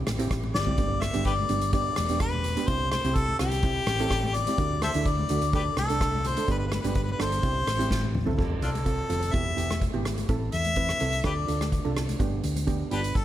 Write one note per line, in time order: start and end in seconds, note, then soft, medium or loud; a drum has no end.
0.07 0.26 A1 loud
0.07 cross-stick medium
0.07 closed hi-hat medium
0.07 high conga medium
0.19 0.47 C4 loud
0.19 0.48 E4 medium
0.19 0.48 G4 loud
0.19 closed hi-hat medium
0.31 0.52 A1 medium
0.31 kick medium
0.31 cross-stick medium
0.31 closed hi-hat medium
0.43 high conga medium
0.54 0.76 G1 medium
0.54 1.03 D5 loud
0.54 snare medium
0.54 low conga medium
0.67 0.73 C4 medium
0.67 0.74 E4 medium
0.67 0.74 G4 medium
0.67 floor tom loud
0.67 high conga medium
0.78 1.08 G1 medium
0.78 1.00 B3 medium
0.78 1.00 D4 medium
0.78 1.00 G4 medium
0.78 kick loud
0.78 closed hi-hat medium
1.01 1.25 E5 loud
1.01 cross-stick medium
1.01 closed hi-hat medium
1.01 high conga medium
1.13 1.43 G1 loud
1.13 1.35 B3 medium
1.13 1.36 D4 medium
1.13 1.36 G4 medium
1.13 closed hi-hat medium
1.25 1.34 G4 medium
1.25 1.32 B4 medium
1.25 1.70 D5 loud
1.25 kick medium
1.25 closed hi-hat medium
1.38 high conga medium
1.49 1.88 G1 medium
1.49 1.64 B3 medium
1.49 1.64 D4 medium
1.49 1.64 G4 medium
1.49 closed hi-hat medium
1.49 low conga medium
1.61 closed hi-hat medium
1.73 1.95 B3 medium
1.73 1.95 D4 medium
1.73 1.95 G4 medium
1.73 2.17 D5 loud
1.73 kick loud
1.73 closed hi-hat medium
1.96 2.55 E1 loud
1.96 cross-stick medium
1.96 closed hi-hat medium
1.96 high conga medium
2.09 2.38 B3 medium
2.09 2.38 D4 medium
2.09 2.38 G4 medium
2.09 closed hi-hat medium
2.20 2.69 B4 loud
2.20 kick loud
2.20 cross-stick medium
2.20 closed hi-hat medium
2.33 high conga medium
2.44 closed hi-hat medium
2.44 low conga medium
2.57 2.64 B3 medium
2.57 2.64 D4 medium
2.57 2.64 G4 medium
2.57 closed hi-hat medium
2.57 high conga medium
2.67 2.98 C2 loud
2.67 2.90 C4 medium
2.67 2.90 E4 medium
2.67 2.90 G4 medium
2.67 2.91 C5 loud
2.67 kick loud
2.67 closed hi-hat medium
2.91 3.16 C5 medium
2.91 cross-stick medium
2.91 closed hi-hat medium
2.91 high conga medium
3.05 3.33 C2 loud
3.05 3.26 C4 medium
3.05 3.26 E4 medium
3.05 3.26 G4 medium
3.05 closed hi-hat medium
3.15 3.38 A4 loud
3.15 kick loud
3.15 closed hi-hat medium
3.29 high conga medium
3.39 3.78 C2 loud
3.39 3.55 C4 medium
3.39 3.55 E4 medium
3.39 4.36 G4 loud
3.39 3.55 G4 medium
3.39 cross-stick medium
3.39 closed hi-hat medium
3.39 low conga medium
3.52 closed hi-hat medium
3.63 3.85 C4 medium
3.63 3.85 E4 medium
3.63 3.85 G4 medium
3.63 kick loud
3.63 closed hi-hat medium
3.87 4.45 A1 loud
3.87 cross-stick loud
3.87 closed hi-hat medium
3.87 high conga medium
3.99 4.28 C4 loud
3.99 4.28 E4 medium
3.99 4.28 A4 loud
3.99 closed hi-hat medium
4.10 kick medium
4.10 cross-stick medium
4.10 closed hi-hat medium
4.24 high conga medium
4.34 4.82 D5 loud
4.34 closed hi-hat medium
4.34 low conga medium
4.47 4.54 C4 medium
4.47 4.54 E4 medium
4.47 4.55 G4 medium
4.47 closed hi-hat medium
4.47 high conga medium
4.58 4.88 D2 medium
4.58 4.80 A3 medium
4.58 4.80 D4 medium
4.58 4.80 F#4 medium
4.58 kick loud
4.58 closed hi-hat medium
4.82 4.90 A4 medium
4.82 4.91 C5 medium
4.82 5.08 E5 loud
4.82 cross-stick medium
4.82 closed hi-hat medium
4.82 high conga medium
4.94 5.24 D2 loud
4.94 5.16 A3 medium
4.94 5.16 D4 medium
4.94 5.16 E4 medium
4.94 closed hi-hat medium
5.05 5.54 D5 loud
5.05 kick medium
5.05 closed hi-hat medium
5.19 high conga medium
5.29 5.69 D2 medium
5.29 5.45 A3 medium
5.29 5.45 D4 medium
5.29 5.45 F#4 medium
5.29 closed hi-hat medium
5.29 low conga medium
5.42 closed hi-hat medium
5.53 5.75 A3 medium
5.53 5.75 D4 medium
5.53 5.62 G4 medium
5.53 5.75 A4 medium
5.53 5.63 B4 medium
5.53 5.76 D5 loud
5.53 kick loud
5.53 closed hi-hat medium
5.77 6.35 C2 loud
5.77 6.28 A4 loud
5.77 cross-stick medium
5.77 closed hi-hat medium
5.77 high conga medium
5.90 6.18 A3 medium
5.90 6.18 D4 medium
5.90 6.18 A4 medium
5.90 closed hi-hat medium
6.01 kick medium
6.01 cross-stick medium
6.01 closed hi-hat medium
6.14 high conga medium
6.25 6.50 C5 medium
6.25 closed hi-hat medium
6.25 low conga medium
6.37 6.44 A3 medium
6.37 6.44 D4 medium
6.37 6.44 A4 medium
6.37 closed hi-hat medium
6.37 high conga medium
6.48 6.78 G1 loud
6.48 6.70 B3 medium
6.48 6.70 D4 medium
6.48 6.70 G4 medium
6.48 6.57 B4 loud
6.48 kick loud
6.48 closed hi-hat medium
6.58 6.65 B4 medium
6.67 6.72 B4 medium
6.72 6.80 B4 medium
6.72 cross-stick medium
6.72 closed hi-hat medium
6.72 high conga medium
6.81 7.13 G1 loud
6.81 7.06 B3 medium
6.81 7.06 D4 medium
6.81 7.06 G4 medium
6.81 6.87 B4 medium
6.81 closed hi-hat medium
6.85 6.94 B4 medium
6.85 low conga medium
6.95 7.02 B4 medium
6.95 kick loud
6.95 closed hi-hat medium
7.04 7.10 B4 medium
7.09 7.17 B4 medium
7.09 high conga medium
7.19 7.39 G1 medium
7.19 7.34 B3 medium
7.19 7.35 D4 medium
7.19 7.35 A4 medium
7.19 8.12 C5 loud
7.19 cross-stick medium
7.19 closed hi-hat medium
7.19 low conga medium
7.32 closed hi-hat medium
7.42 7.63 C2 loud
7.42 7.65 C4 medium
7.42 7.65 E4 medium
7.42 7.65 G4 medium
7.42 kick loud
7.42 closed hi-hat medium
7.67 8.25 A1 loud
7.67 cross-stick medium
7.67 closed hi-hat medium
7.67 high conga medium
7.79 8.08 C4 medium
7.79 8.08 E4 medium
7.79 8.08 G4 loud
7.79 closed hi-hat medium
7.79 high conga medium
7.91 kick medium
7.91 snare medium
7.91 high conga medium
8.04 high conga medium
8.15 mid tom medium
8.15 low conga medium
8.26 8.34 C4 medium
8.26 8.34 E4 medium
8.26 8.34 A4 medium
8.26 floor tom medium
8.26 low conga medium
8.38 8.58 F1 medium
8.38 8.67 C4 medium
8.38 8.67 F4 medium
8.38 8.67 A4 medium
8.38 kick loud
8.38 crash medium
8.62 9.01 C2 medium
8.62 8.70 D4 medium
8.62 8.70 F4 medium
8.62 9.35 A4 medium
8.62 closed hi-hat medium
8.62 low conga medium
8.75 closed hi-hat medium
8.75 high conga medium
8.85 9.01 C4 medium
8.85 9.01 F4 medium
8.85 9.01 A4 medium
8.85 kick medium
8.85 closed hi-hat medium
9.09 9.29 F1 medium
9.09 9.34 C4 medium
9.09 9.34 F4 medium
9.09 9.34 A4 medium
9.09 closed hi-hat medium
9.09 low conga medium
9.22 closed hi-hat medium
9.33 9.54 E1 medium
9.33 9.53 B3 medium
9.33 9.53 E4 medium
9.33 9.53 G4 medium
9.33 9.81 E5 loud
9.33 kick loud
9.33 closed hi-hat medium
9.57 9.87 E1 medium
9.57 9.79 B3 medium
9.57 9.79 E4 medium
9.57 9.79 G4 medium
9.57 closed hi-hat medium
9.71 cross-stick medium
9.71 closed hi-hat medium
9.71 high conga medium
9.81 kick medium
9.81 closed hi-hat medium
9.93 10.23 G#1 medium
9.93 10.15 B3 medium
9.93 10.15 E4 medium
9.93 10.15 G4 medium
9.93 high conga medium
10.05 cross-stick medium
10.05 closed hi-hat medium
10.05 low conga medium
10.18 closed hi-hat medium
10.18 high conga medium
10.29 10.49 A1 medium
10.29 10.58 C4 medium
10.29 10.58 E4 medium
10.29 10.58 A4 loud
10.29 kick loud
10.29 closed hi-hat medium
10.52 10.92 E2 medium
10.52 11.21 E5 loud
10.52 closed hi-hat medium
10.52 low conga medium
10.65 closed hi-hat medium
10.65 high conga medium
10.76 10.92 C4 medium
10.76 10.92 E4 medium
10.76 10.92 B4 medium
10.76 kick medium
10.76 closed hi-hat medium
10.89 cross-stick medium
11.00 11.21 C2 medium
11.00 11.25 C4 medium
11.00 11.25 E4 medium
11.00 11.23 A4 medium
11.00 closed hi-hat medium
11.00 low conga medium
11.13 closed hi-hat medium
11.24 11.44 D2 medium
11.24 11.44 D4 medium
11.24 11.44 F4 medium
11.24 11.33 G4 medium
11.24 11.44 A4 medium
11.24 11.31 B4 medium
11.24 11.69 D5 medium
11.24 kick loud
11.24 cross-stick medium
11.24 closed hi-hat medium
11.47 11.78 D2 medium
11.47 11.70 D4 medium
11.47 11.70 F4 medium
11.47 11.70 A4 medium
11.47 closed hi-hat medium
11.61 cross-stick medium
11.61 closed hi-hat medium
11.61 high conga medium
11.72 kick medium
11.72 closed hi-hat medium
11.84 12.14 C2 medium
11.84 12.06 D4 medium
11.84 12.06 F4 medium
11.84 12.06 A4 medium
11.84 high conga medium
11.96 cross-stick medium
11.96 closed hi-hat medium
11.96 low conga medium
12.09 closed hi-hat medium
12.09 high conga medium
12.19 12.39 G1 medium
12.19 12.49 B3 medium
12.19 12.49 D4 medium
12.19 12.49 G4 medium
12.19 kick loud
12.19 closed hi-hat medium
12.44 12.83 D2 medium
12.44 closed hi-hat medium
12.44 low conga medium
12.56 closed hi-hat medium
12.56 high conga medium
12.67 12.82 B3 medium
12.67 12.82 D4 medium
12.67 12.82 G4 medium
12.67 kick medium
12.67 closed hi-hat medium
12.91 13.11 G1 medium
12.91 13.20 B3 medium
12.91 13.20 D4 medium
12.91 12.99 D4 medium
12.91 13.20 F4 medium
12.91 13.00 G4 medium
12.91 13.18 B4 medium
12.91 closed hi-hat medium
12.91 low conga medium
13.04 closed hi-hat medium
13.15 13.25 G1 medium
13.15 13.25 A4 medium
13.15 kick loud
13.15 closed hi-hat medium